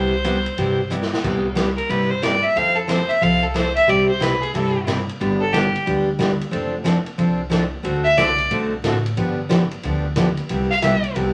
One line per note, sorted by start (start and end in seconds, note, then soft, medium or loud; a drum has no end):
0.00 0.44 C2 medium
0.00 0.13 C3 medium
0.00 0.13 G3 medium
0.00 0.13 B3 medium
0.00 0.13 E4 medium
0.00 0.14 G4 medium
0.00 0.86 C5 medium
0.24 0.36 C3 medium
0.24 0.36 G3 medium
0.24 0.36 B3 medium
0.24 0.37 E4 medium
0.24 0.37 G4 medium
0.24 hi-hat pedal medium
0.24 ride medium
0.46 ride soft
0.57 1.10 G2 medium
0.57 0.79 C3 medium
0.57 0.80 G3 medium
0.57 0.80 B3 medium
0.57 0.80 E4 medium
0.57 0.80 G4 medium
0.57 ride medium
0.90 1.02 C3 medium
0.90 1.02 G3 medium
0.90 1.02 B3 medium
0.90 1.03 E4 medium
0.90 1.03 G4 medium
0.90 hi-hat pedal medium
1.02 snare medium
1.13 snare medium
1.23 1.77 C2 medium
1.23 1.45 C3 medium
1.23 1.45 G3 medium
1.23 1.45 B3 soft
1.23 1.46 E4 medium
1.23 1.46 G4 medium
1.23 kick medium
1.23 crash medium
1.55 1.68 C3 medium
1.55 1.68 G3 medium
1.55 1.68 B3 medium
1.55 1.68 E4 medium
1.55 1.68 G4 medium
1.55 snare medium
1.55 hi-hat pedal medium
1.55 ride medium
1.77 1.91 A#4 medium
1.77 ride soft
1.89 2.43 G2 medium
1.89 2.11 C3 medium
1.89 2.11 G3 medium
1.89 2.11 B3 medium
1.89 2.11 E4 medium
1.89 2.12 G4 medium
1.89 2.12 B4 medium
1.89 ride medium
2.10 2.24 C5 medium
2.22 2.34 C3 medium
2.22 2.34 G3 medium
2.22 2.35 B3 medium
2.22 2.35 E4 medium
2.22 2.35 G4 medium
2.22 2.45 D5 medium
2.22 snare medium
2.22 hi-hat pedal medium
2.22 ride medium
2.43 2.59 E5 medium
2.55 3.09 F2 medium
2.55 2.77 F3 soft
2.55 2.77 C4 medium
2.55 2.78 E4 medium
2.55 2.78 A4 medium
2.55 2.77 F5 loud
2.55 ride medium
2.76 2.91 A4 medium
2.88 3.00 F3 medium
2.88 3.00 C4 medium
2.88 3.00 E4 medium
2.88 3.01 A4 medium
2.88 3.11 C5 medium
2.88 snare medium
2.88 hi-hat pedal soft
2.88 ride medium
3.09 3.24 E5 medium
3.09 ride soft
3.21 3.75 C2 medium
3.21 3.43 F3 medium
3.21 3.43 C4 medium
3.21 3.44 E4 medium
3.21 3.44 A4 medium
3.21 3.45 F5 medium
3.21 ride medium
3.43 3.58 A4 medium
3.54 3.66 F3 medium
3.54 3.66 C4 medium
3.54 3.66 E4 medium
3.54 3.67 A4 medium
3.54 3.75 C5 medium
3.54 snare medium
3.54 hi-hat pedal medium
3.54 ride medium
3.75 3.91 E5 medium
3.75 ride medium
3.87 4.42 C2 medium
3.87 4.09 C3 medium
3.87 4.10 G3 medium
3.87 4.10 C4 medium
3.87 4.09 E4 medium
3.87 4.10 G4 medium
3.87 4.08 D5 medium
3.87 ride medium
4.09 4.24 C5 medium
4.20 4.32 C3 medium
4.20 4.32 G3 medium
4.20 4.33 C4 medium
4.20 4.33 E4 medium
4.20 4.33 G4 medium
4.20 4.44 B4 medium
4.20 snare medium
4.20 hi-hat pedal medium
4.20 ride medium
4.42 4.54 G#4 medium
4.42 ride soft
4.54 5.07 G2 medium
4.54 4.76 C3 medium
4.54 4.76 G3 medium
4.54 4.76 C4 medium
4.54 4.76 E4 medium
4.54 4.77 G4 medium
4.54 4.86 A4 medium
4.54 ride medium
4.87 4.99 C3 medium
4.87 4.99 G3 medium
4.87 4.99 C4 medium
4.87 4.99 E4 medium
4.87 4.99 G4 medium
4.87 snare medium
4.87 hi-hat pedal medium
4.87 ride medium
5.09 ride soft
5.20 5.73 G1 loud
5.20 5.42 D3 medium
5.20 5.42 G3 medium
5.20 5.42 B3 medium
5.20 5.42 D4 medium
5.20 5.42 G4 medium
5.20 ride medium
5.40 5.54 A4 medium
5.53 5.65 D3 medium
5.53 5.65 G3 medium
5.53 5.65 B3 medium
5.53 5.65 D4 medium
5.53 5.86 G4 medium
5.53 5.65 G4 medium
5.53 snare medium
5.53 hi-hat pedal medium
5.53 ride medium
5.75 ride soft
5.86 6.40 D2 medium
5.86 6.08 D3 medium
5.86 6.08 G3 medium
5.86 6.08 B3 medium
5.86 6.08 D4 medium
5.86 6.08 G4 medium
5.86 ride medium
6.19 6.31 D3 medium
6.19 6.31 G3 medium
6.19 6.31 B3 medium
6.19 6.31 D4 medium
6.19 6.31 G4 medium
6.19 snare medium
6.19 hi-hat pedal medium
6.19 ride medium
6.41 ride medium
6.51 7.05 F1 loud
6.51 6.74 F3 medium
6.51 6.74 C4 medium
6.51 6.74 D4 medium
6.51 6.74 A4 medium
6.51 ride medium
6.84 6.97 F3 medium
6.84 6.97 C4 medium
6.84 6.97 D4 medium
6.84 6.97 A4 medium
6.84 snare medium
6.84 hi-hat pedal medium
6.84 ride medium
7.06 ride soft
7.18 7.71 C2 medium
7.18 7.40 F3 medium
7.18 7.40 C4 medium
7.18 7.40 D4 medium
7.18 7.40 A4 medium
7.18 ride medium
7.50 7.62 F3 medium
7.50 7.63 C4 medium
7.50 7.63 D4 medium
7.50 7.63 A4 medium
7.50 snare medium
7.50 hi-hat pedal medium
7.50 ride medium
7.83 8.11 D2 medium
7.83 8.06 D3 medium
7.83 8.06 A3 medium
7.83 8.06 C4 medium
7.83 8.06 F#4 medium
7.83 8.06 A4 medium
7.83 ride medium
8.04 8.19 E5 loud
8.17 8.46 C2 medium
8.17 8.29 D3 medium
8.17 8.29 A3 medium
8.17 8.29 C4 medium
8.17 8.29 F#4 medium
8.17 8.30 A4 medium
8.17 8.51 D5 medium
8.17 snare medium
8.17 hi-hat pedal medium
8.17 ride medium
8.38 ride soft
8.50 8.79 B1 medium
8.50 8.72 D3 medium
8.50 8.72 A3 medium
8.50 8.73 C4 medium
8.50 8.73 F#4 medium
8.50 8.73 A4 medium
8.50 ride medium
8.84 9.12 A1 medium
8.84 8.96 D3 medium
8.84 8.96 A3 medium
8.84 8.96 C4 medium
8.84 8.96 F#4 medium
8.84 8.96 A4 medium
8.84 snare medium
8.84 hi-hat pedal medium
8.84 ride medium
9.06 ride medium
9.17 9.70 G1 medium
9.17 9.39 D3 medium
9.17 9.39 F3 medium
9.17 9.39 B3 medium
9.17 9.39 D4 medium
9.17 9.39 G4 medium
9.17 ride medium
9.49 9.61 D3 medium
9.49 9.61 F3 medium
9.49 9.62 B3 medium
9.49 9.62 D4 medium
9.49 9.62 G4 medium
9.49 snare medium
9.49 hi-hat pedal soft
9.49 ride medium
9.71 ride soft
9.83 10.37 D2 medium
9.83 10.05 D3 medium
9.83 10.05 F3 medium
9.83 10.05 B3 medium
9.83 10.06 D4 medium
9.83 10.06 G4 medium
9.83 ride medium
10.16 10.28 D3 medium
10.16 10.28 F3 medium
10.16 10.28 B3 medium
10.16 10.28 D4 medium
10.16 10.28 G4 medium
10.16 snare medium
10.16 hi-hat pedal medium
10.16 ride medium
10.37 ride medium
10.49 11.02 C2 medium
10.49 10.71 C3 medium
10.49 10.71 G3 soft
10.49 10.71 B3 medium
10.49 10.71 E4 medium
10.49 10.72 G4 medium
10.49 ride medium
10.71 10.82 F5 loud
10.82 10.94 C3 medium
10.82 10.94 G3 medium
10.82 10.94 B3 medium
10.82 10.95 E4 medium
10.82 10.95 G4 medium
10.82 11.14 E5 medium
10.82 snare medium
10.82 hi-hat pedal medium
10.82 ride medium
11.04 ride soft
11.15 11.33 C2 medium
11.15 11.33 C3 medium
11.15 11.33 G3 medium
11.15 11.33 B3 medium
11.15 11.33 E4 medium
11.15 11.33 G4 medium
11.15 ride medium